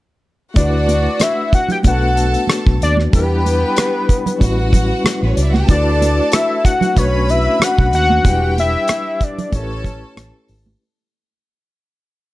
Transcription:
0.54 1.06 D2 medium
0.54 1.81 A3 medium
0.54 1.82 D4 medium
0.54 1.83 E4 medium
0.54 1.51 F#4 medium
0.54 1.23 D5 medium
0.54 1.51 F#5 medium
0.54 kick medium
0.54 closed hi-hat medium
0.54 muted conga soft
0.58 1.83 F#4 medium
0.58 1.84 B4 medium
0.88 closed hi-hat medium
0.88 muted conga soft
1.20 1.53 E5 medium
1.20 cross-stick medium
1.20 closed hi-hat medium
1.20 high conga medium
1.53 1.70 F#5 loud
1.53 kick medium
1.53 closed hi-hat medium
1.69 1.78 G5 medium
1.69 closed hi-hat soft
1.69 low conga medium
1.82 2.35 B1 medium
1.82 3.09 A3 medium
1.82 3.10 B3 soft
1.82 3.11 D4 medium
1.82 kick medium
1.82 closed hi-hat medium
1.82 muted conga soft
1.86 3.11 F#4 medium
1.86 2.80 A4 medium
1.86 3.12 B4 medium
1.86 2.46 F#5 medium
1.86 2.80 A5 medium
2.17 closed hi-hat medium
2.34 closed hi-hat soft
2.47 cross-stick loud
2.47 closed hi-hat medium
2.47 high conga medium
2.67 2.78 B1 medium
2.67 kick medium
2.82 3.06 D#2 medium
2.82 2.97 D5 loud
2.82 closed hi-hat medium
2.97 cross-stick soft
2.97 high conga medium
3.10 3.63 E2 medium
3.10 4.37 G3 medium
3.10 4.38 D4 medium
3.10 4.39 E4 medium
3.10 kick medium
3.10 closed hi-hat medium
3.10 muted conga soft
3.14 4.08 G4 medium
3.14 4.40 G4 medium
3.14 5.02 B4 loud
3.14 4.40 B4 medium
3.14 4.08 G5 medium
3.46 closed hi-hat medium
3.46 muted conga soft
3.76 cross-stick loud
3.76 closed hi-hat medium
3.76 high conga medium
4.09 kick medium
4.09 closed hi-hat medium
4.26 closed hi-hat medium
4.26 low conga medium
4.38 4.91 A1 medium
4.38 5.65 G3 medium
4.38 5.66 C#4 medium
4.38 5.67 E4 medium
4.38 5.14 F#4 medium
4.38 5.14 F#5 medium
4.38 kick medium
4.38 closed hi-hat medium
4.38 muted conga soft
4.43 5.68 F#4 medium
4.43 5.68 B4 medium
4.73 kick medium
4.73 closed hi-hat medium
4.73 muted conga soft
4.73 low conga soft
5.04 cross-stick loud
5.04 closed hi-hat medium
5.04 high conga medium
5.23 5.34 A1 medium
5.23 5.30 B3 medium
5.23 5.30 B4 medium
5.29 5.37 C#4 medium
5.29 5.37 C#5 medium
5.35 5.62 C#2 medium
5.35 5.45 D4 medium
5.35 5.45 D5 medium
5.35 closed hi-hat medium
5.43 5.53 E4 medium
5.43 5.53 E5 medium
5.51 5.61 F#4 medium
5.51 5.60 F#5 medium
5.51 cross-stick soft
5.51 high conga medium
5.59 5.68 G4 medium
5.59 5.68 G5 medium
5.66 6.19 D2 loud
5.66 6.92 A3 medium
5.66 6.94 D4 medium
5.66 6.95 E4 medium
5.66 6.62 A4 medium
5.66 6.35 D5 loud
5.66 6.62 A5 loud
5.66 kick medium
5.66 closed hi-hat medium
5.66 muted conga soft
5.71 6.96 F#4 medium
5.71 6.97 B4 medium
6.02 closed hi-hat medium
6.02 muted conga soft
6.32 6.64 E5 loud
6.32 cross-stick loud
6.32 closed hi-hat loud
6.32 high conga medium
6.65 6.99 F#5 loud
6.65 kick medium
6.65 closed hi-hat medium
6.81 closed hi-hat soft
6.81 low conga medium
6.94 7.47 B1 medium
6.94 8.21 A3 medium
6.94 8.22 C#4 medium
6.94 8.22 D4 soft
6.94 7.91 B4 medium
6.94 7.31 C#5 medium
6.94 7.91 B5 medium
6.94 kick medium
6.94 closed hi-hat medium
6.94 muted conga soft
6.98 8.23 F#4 medium
6.98 8.24 B4 medium
7.28 7.65 E5 loud
7.28 closed hi-hat medium
7.28 muted conga soft
7.60 7.94 F#5 loud
7.60 cross-stick medium
7.60 closed hi-hat medium
7.60 high conga medium
7.78 7.90 B1 medium
7.78 kick medium
7.93 8.18 D#2 medium
7.93 8.54 F#5 loud
7.93 closed hi-hat medium
8.10 high conga medium
8.23 8.75 E1 medium
8.23 8.31 F#3 medium
8.23 9.50 D4 medium
8.23 9.51 E4 medium
8.23 9.19 G4 medium
8.23 9.19 G5 loud
8.23 kick medium
8.23 closed hi-hat medium
8.23 muted conga soft
8.27 9.53 G3 medium
8.27 9.52 G4 medium
8.27 9.52 B4 medium
8.58 9.25 E5 loud
8.58 closed hi-hat medium
8.58 muted conga soft
8.88 cross-stick loud
8.88 closed hi-hat medium
8.88 high conga medium
9.21 9.56 D5 medium
9.21 kick medium
9.21 closed hi-hat medium
9.38 closed hi-hat soft
9.38 low conga medium
9.50 10.03 A1 medium
9.50 10.77 A3 medium
9.50 10.78 C#4 soft
9.50 10.79 E4 soft
9.50 10.47 A4 medium
9.50 10.47 A5 medium
9.50 kick medium
9.50 closed hi-hat medium
9.50 muted conga soft
9.54 10.79 G4 soft
9.54 9.62 A#4 soft
9.54 10.50 C#5 medium
9.63 10.84 B4 medium
9.84 kick medium
9.84 closed hi-hat medium
9.84 muted conga soft
9.84 low conga soft
10.17 10.30 A1 medium
10.17 cross-stick loud
10.17 closed hi-hat medium
10.17 high conga medium
10.48 10.74 G#1 medium
10.48 open hi-hat medium
10.66 high conga medium

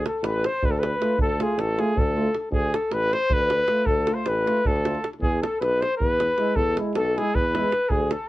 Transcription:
0.06 0.26 A4 medium
0.06 0.27 A4 medium
0.06 davul high medium
0.23 0.45 A1 loud
0.23 0.47 B4 medium
0.23 0.49 B4 medium
0.23 davul high medium
0.45 0.67 C5 medium
0.45 0.68 C5 medium
0.45 davul high medium
0.63 0.93 D2 loud
0.63 0.73 B4 medium
0.63 davul low loud
0.67 0.81 A4 medium
0.67 0.71 B4 medium
0.71 0.81 A4 medium
0.80 1.19 B4 medium
0.80 davul high medium
1.00 1.15 A3 medium
1.00 1.16 F4 medium
1.00 davul high medium
1.18 1.39 D2 medium
1.18 1.43 A4 medium
1.18 1.44 A4 medium
1.18 davul low loud
1.39 1.54 A3 medium
1.39 1.55 F4 medium
1.39 1.60 G#4 medium
1.39 1.62 G#4 medium
1.39 davul high medium
1.57 1.78 A1 loud
1.57 1.80 A4 medium
1.57 1.81 A4 medium
1.57 davul high medium
1.76 1.94 A3 medium
1.76 1.92 F4 medium
1.76 2.00 G#4 medium
1.76 davul high medium
1.96 2.26 D2 medium
1.96 2.37 A4 medium
1.96 2.51 A4 medium
1.96 davul low loud
2.15 2.30 A3 medium
2.15 2.30 F4 medium
2.34 davul high medium
2.51 2.73 D2 loud
2.51 2.75 G#4 medium
2.51 2.77 G#4 medium
2.51 davul low medium
2.74 2.93 A4 medium
2.74 2.95 A4 medium
2.74 davul high medium
2.91 3.13 A1 medium
2.91 3.15 B4 medium
2.91 3.14 B4 loud
2.91 davul high medium
3.13 3.35 C5 loud
3.13 3.34 C5 medium
3.13 davul high medium
3.30 3.61 D2 medium
3.30 3.88 B4 medium
3.30 3.87 B4 loud
3.30 davul low loud
3.50 davul high medium
3.68 3.85 A3 medium
3.68 3.84 F4 medium
3.68 davul high medium
3.86 4.08 D2 medium
3.86 4.15 A4 medium
3.86 4.16 A4 medium
3.86 davul low medium
4.06 4.24 A3 soft
4.06 4.22 F4 medium
4.06 davul high medium
4.14 4.30 C5 medium
4.14 4.29 C5 medium
4.26 4.47 A1 loud
4.26 4.67 B4 medium
4.26 4.68 B4 medium
4.26 davul high medium
4.45 4.62 A3 medium
4.45 4.61 F4 medium
4.45 davul high medium
4.57 davul high soft
4.65 4.96 D2 loud
4.65 5.08 A4 medium
4.65 davul low medium
4.76 davul high soft
4.84 4.99 A3 medium
4.84 4.99 F4 soft
4.84 davul high medium
4.95 davul high soft
5.04 davul high medium
5.13 davul high soft
5.20 5.42 E2 loud
5.20 5.40 G#4 medium
5.20 5.41 G#4 medium
5.20 davul low medium
5.41 5.59 A4 medium
5.41 davul high medium
5.60 5.82 B1 loud
5.60 5.84 B4 medium
5.60 5.83 B4 loud
5.60 davul high medium
5.81 5.97 C5 loud
5.81 6.00 C5 medium
5.81 davul high medium
5.97 6.31 E2 medium
5.97 6.57 B4 medium
5.97 6.58 B4 medium
5.97 davul low medium
6.20 davul high medium
6.37 6.54 G#3 medium
6.37 6.53 E4 medium
6.37 davul high medium
6.56 6.78 E2 loud
6.56 6.77 A4 medium
6.56 davul low medium
6.76 6.94 G#3 medium
6.76 6.92 E4 medium
6.76 davul high medium
6.95 7.17 B1 loud
6.95 7.19 A4 medium
6.95 davul high medium
7.16 7.33 G#3 medium
7.16 7.31 E4 medium
7.16 7.37 G#4 medium
7.16 7.37 G#4 loud
7.16 davul high medium
7.35 7.65 E2 loud
7.35 7.91 B4 loud
7.35 7.93 B4 medium
7.35 davul low medium
7.55 7.70 G#3 medium
7.55 7.69 E4 medium
7.55 davul high medium
7.72 davul high medium
7.89 8.12 D2 loud
7.89 8.13 G#4 medium
7.89 8.14 G#4 medium
7.89 davul low medium
8.11 8.29 A4 medium
8.11 davul high medium

